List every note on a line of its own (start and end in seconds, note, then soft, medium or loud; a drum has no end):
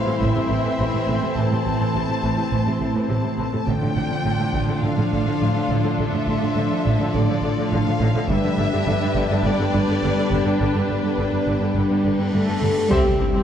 0.00 3.35 E3 medium
0.00 3.68 E3 medium
0.00 3.66 A3 medium
0.00 3.35 C4 medium
0.00 3.43 C4 medium
0.00 3.64 C4 medium
0.00 3.44 E4 medium
0.00 3.44 C5 medium
0.00 3.64 C5 medium
0.00 0.22 F5 loud
0.06 0.13 A2 soft
0.06 0.12 C3 soft
0.06 0.16 E4 medium
0.21 0.28 A1 medium
0.21 0.27 A2 medium
0.21 0.27 E3 medium
0.21 0.30 A3 medium
0.21 1.35 E5 medium
0.35 0.42 A2 soft
0.35 0.41 C3 soft
0.35 0.45 C4 medium
0.50 0.57 A1 soft
0.50 0.56 A2 soft
0.50 0.56 C3 soft
0.64 0.70 A2 medium
0.64 0.70 E3 medium
0.64 0.74 A3 medium
0.79 0.86 A1 soft
0.79 0.85 A2 soft
0.79 0.85 C3 soft
0.79 0.88 C4 medium
0.94 1.00 A2 soft
0.94 1.00 C3 soft
1.08 1.14 A1 medium
1.08 1.14 A2 medium
1.08 1.14 E3 soft
1.08 1.17 A3 medium
1.23 1.28 A2 soft
1.23 1.29 C3 soft
1.23 1.31 A4 medium
1.37 1.43 A1 soft
1.37 1.43 A2 medium
1.37 1.43 E3 medium
1.37 1.46 A3 medium
1.37 3.08 A5 medium
1.51 1.57 A2 soft
1.51 1.57 C3 soft
1.51 1.60 E4 medium
1.66 1.72 A1 soft
1.66 1.72 A2 soft
1.66 1.71 C3 soft
1.66 1.75 A4 medium
1.80 1.86 A2 soft
1.80 1.86 E3 medium
1.80 1.89 A3 medium
1.95 2.01 A1 soft
1.95 2.00 A2 soft
1.95 2.01 C3 soft
1.95 2.03 E4 medium
2.09 2.15 A2 soft
2.09 2.15 C3 soft
2.09 2.18 E4 soft
2.23 2.29 A1 soft
2.23 2.29 A2 medium
2.23 2.29 E3 medium
2.23 2.32 A3 medium
2.38 2.44 A2 soft
2.38 2.44 C3 soft
2.38 2.46 E4 medium
2.52 2.58 A1 medium
2.52 2.58 A2 soft
2.52 2.59 E3 soft
2.52 2.61 A3 medium
2.67 2.72 A2 soft
2.67 2.73 C3 soft
2.67 2.76 C4 medium
2.81 2.87 A1 soft
2.81 2.87 A2 soft
2.81 2.87 C3 soft
2.81 2.90 E4 medium
2.95 3.01 A2 medium
2.95 3.02 E3 medium
2.95 3.04 A3 medium
3.09 3.16 A1 soft
3.09 3.15 A2 soft
3.09 3.16 C3 soft
3.09 3.19 C4 medium
3.09 3.66 A5 medium
3.24 3.30 A2 soft
3.24 3.30 C3 soft
3.24 3.33 C4 medium
3.38 3.45 A1 soft
3.38 3.45 A2 medium
3.38 3.44 E3 soft
3.38 3.48 A3 medium
3.53 3.59 A2 soft
3.53 3.59 C3 soft
3.53 3.62 A4 medium
3.67 3.74 A1 medium
3.67 3.73 A2 medium
3.67 3.77 D3 medium
3.67 3.74 D3 soft
3.67 8.25 F3 medium
3.67 8.29 F3 medium
3.67 8.25 A3 medium
3.67 8.25 D4 medium
3.67 8.29 D4 medium
3.67 8.25 D4 soft
3.67 8.25 F4 medium
3.67 8.25 A4 soft
3.67 8.28 D5 medium
3.67 4.83 G5 medium
3.82 3.88 A2 soft
3.82 3.88 D3 soft
3.82 3.91 A3 medium
3.96 4.03 A1 soft
3.96 4.02 A2 soft
3.96 4.02 D3 soft
3.96 4.05 D4 medium
4.11 4.17 A2 medium
4.11 4.17 D3 medium
4.11 4.20 D3 medium
4.25 4.32 A1 soft
4.25 4.31 A2 soft
4.25 4.32 D3 soft
4.25 4.34 A3 medium
4.39 4.46 A2 soft
4.39 4.45 D3 soft
4.39 4.49 A3 medium
4.54 4.61 A1 medium
4.54 4.60 A2 medium
4.54 4.60 D3 medium
4.54 4.63 D3 medium
4.68 4.75 A2 soft
4.68 4.74 D3 soft
4.68 4.77 A3 medium
4.83 4.89 A1 medium
4.83 4.89 A2 medium
4.83 4.92 D3 medium
4.83 4.89 D3 medium
4.83 5.99 F5 medium
4.97 5.03 A2 soft
4.97 5.03 D3 soft
4.97 5.06 F3 medium
5.12 5.18 A1 soft
5.12 5.18 A2 soft
5.12 5.18 D3 soft
5.12 5.21 A3 medium
5.26 5.32 A2 medium
5.26 5.35 D3 medium
5.26 5.33 D3 medium
5.41 5.47 A1 soft
5.41 5.47 A2 soft
5.41 5.47 D3 soft
5.41 5.50 F3 medium
5.55 5.61 A2 soft
5.55 5.61 D3 soft
5.55 5.64 F3 medium
5.69 5.76 A1 medium
5.69 5.75 A2 medium
5.69 5.79 D3 medium
5.69 5.76 D3 medium
5.84 5.90 A2 soft
5.84 5.90 D3 soft
5.84 5.93 D4 medium
5.98 6.05 A1 medium
5.98 6.04 A2 medium
5.98 6.07 D3 medium
5.98 6.05 D3 medium
5.98 7.12 E5 medium
6.13 6.19 A2 soft
6.13 6.19 D3 soft
6.13 6.22 A3 medium
6.27 6.33 A1 soft
6.27 6.33 A2 soft
6.27 6.34 D3 soft
6.27 6.36 D4 medium
6.42 6.48 A2 medium
6.42 6.51 D3 medium
6.42 6.48 D3 medium
6.56 6.62 A1 soft
6.56 6.62 A2 soft
6.56 6.63 D3 soft
6.56 6.65 A3 medium
6.71 6.77 A2 soft
6.71 6.77 D3 soft
6.85 6.92 A1 medium
6.85 6.91 A2 medium
6.85 6.94 D3 medium
6.85 6.91 D3 medium
7.00 7.06 A2 soft
7.00 7.07 D3 soft
7.00 7.08 A3 medium
7.14 7.20 A1 medium
7.14 7.20 A2 medium
7.14 7.23 D3 medium
7.14 7.20 D3 medium
7.14 7.72 D5 medium
7.29 7.35 A2 medium
7.29 7.35 D3 medium
7.29 7.37 F3 medium
7.43 7.49 A1 medium
7.43 7.49 A2 medium
7.43 7.49 D3 medium
7.43 7.52 A3 medium
7.58 7.63 A2 medium
7.58 7.66 D3 medium
7.58 7.64 D3 medium
7.72 7.78 A1 medium
7.72 7.78 A2 medium
7.72 7.78 D3 medium
7.72 7.81 F3 medium
7.72 8.30 F5 medium
7.87 7.92 A2 medium
7.87 7.92 D3 medium
7.87 7.95 F3 medium
8.01 8.07 A1 medium
8.01 8.07 A2 medium
8.01 8.07 D3 medium
8.01 8.10 D3 medium
8.15 8.21 A2 medium
8.15 8.21 D3 medium
8.15 8.24 D4 medium
8.29 8.35 G1 medium
8.29 8.36 G2 medium
8.29 8.36 D3 medium
8.29 12.16 G3 medium
8.29 12.89 G3 medium
8.29 8.39 G3 loud
8.29 12.91 B3 medium
8.29 12.16 D4 medium
8.29 12.67 D4 medium
8.29 12.87 D4 medium
8.29 12.71 G4 medium
8.29 12.67 B4 medium
8.29 12.87 D5 medium
8.29 9.42 E5 loud
8.44 8.50 G2 medium
8.44 8.50 D3 medium
8.44 8.53 D4 medium
8.58 8.64 G1 medium
8.58 8.65 G2 medium
8.58 8.64 D3 medium
8.58 8.67 G4 medium
8.73 8.79 G2 medium
8.73 8.79 D3 medium
8.73 8.82 G3 medium
8.87 8.93 G1 medium
8.87 8.93 G2 medium
8.87 8.93 D3 medium
8.87 8.96 D4 medium
9.02 9.08 G2 medium
9.02 9.08 D3 medium
9.02 9.10 D4 medium
9.16 9.22 G1 medium
9.16 9.22 G2 medium
9.16 9.22 D3 medium
9.16 9.25 G3 medium
9.31 9.37 G2 medium
9.31 9.37 D3 soft
9.31 9.39 D4 medium
9.45 9.51 G1 medium
9.45 9.51 G2 medium
9.45 9.51 D3 medium
9.45 9.53 G3 loud
9.45 10.60 D5 loud
9.59 9.65 G2 medium
9.59 9.65 D3 medium
9.59 9.68 B3 medium
9.74 9.80 G1 medium
9.74 9.79 G2 medium
9.74 9.80 D3 medium
9.74 9.82 D4 medium
9.88 9.94 G2 medium
9.88 9.95 D3 medium
9.88 9.97 G3 medium
10.02 10.08 G1 medium
10.02 10.08 G2 medium
10.02 10.09 D3 medium
10.02 10.11 B3 medium
10.17 10.23 G2 medium
10.17 10.24 D3 medium
10.17 10.26 B3 medium
10.31 10.37 G1 medium
10.31 10.37 G2 medium
10.31 10.38 D3 medium
10.31 10.40 G3 medium
10.45 10.51 G2 soft
10.45 10.52 D3 medium
10.45 10.55 G4 medium
10.60 10.66 G1 medium
10.60 10.66 G2 medium
10.60 10.66 D3 medium
10.60 10.69 G3 medium
10.60 12.30 B4 medium
10.60 cymbal swell medium
10.74 10.80 G2 soft
10.74 10.81 D3 soft
10.74 10.83 D4 medium
10.88 10.95 G1 soft
10.88 10.94 G2 soft
10.88 10.95 D3 soft
10.88 10.98 G4 medium
11.03 11.09 G2 medium
11.03 11.10 D3 medium
11.03 11.12 G3 medium
11.18 11.24 G1 soft
11.18 11.23 G2 soft
11.18 11.24 D3 soft
11.18 11.26 D4 medium
11.32 11.38 G2 soft
11.32 11.39 D3 soft
11.32 11.41 D4 medium
11.47 11.53 G1 soft
11.47 11.52 G2 medium
11.47 11.54 D3 medium
11.47 11.55 G3 medium
11.61 11.67 G2 soft
11.61 11.68 D3 soft
11.61 11.70 D4 medium
11.75 11.81 G1 medium
11.75 11.81 G2 soft
11.75 11.82 D3 medium
11.75 11.84 G3 medium
11.90 11.96 G2 soft
11.90 11.96 D3 soft
11.90 11.99 B3 medium
12.04 12.10 G1 soft
12.04 12.10 G2 soft
12.04 12.11 D3 soft
12.04 12.13 D4 medium
12.18 12.24 G2 medium
12.18 12.25 D3 medium
12.18 12.28 G3 medium
12.33 12.39 G1 soft
12.33 12.39 G2 soft
12.33 12.39 D3 soft
12.33 12.87 A3 medium
12.33 12.42 B3 medium
12.33 12.87 A4 medium
12.48 12.54 G2 soft
12.48 12.54 D3 soft
12.48 12.56 B3 medium
12.62 12.68 G1 soft
12.62 12.68 G2 medium
12.62 12.68 D3 medium
12.62 12.71 G3 medium
12.76 12.82 G2 soft
12.76 12.83 D3 soft
12.76 12.85 G4 medium
12.90 13.04 C2 medium
12.90 13.00 C3 loud
12.90 13.43 G3 medium
12.90 13.04 C4 medium
12.90 13.43 G4 medium
12.90 13.04 C5 medium
12.90 13.05 E5 loud
12.90 impact medium
13.05 13.11 C2 medium
13.05 13.14 G3 medium
13.05 13.11 C4 medium
13.05 13.11 G4 medium
13.05 13.11 C5 soft
13.19 13.25 C2 medium
13.19 13.26 C4 medium
13.19 13.29 C4 medium
13.19 13.26 E4 medium
13.19 13.26 G4 soft
13.34 13.40 C2 medium
13.34 13.43 C3 loud
13.34 13.40 C4 medium
13.34 13.41 C5 medium
13.34 13.40 E5 medium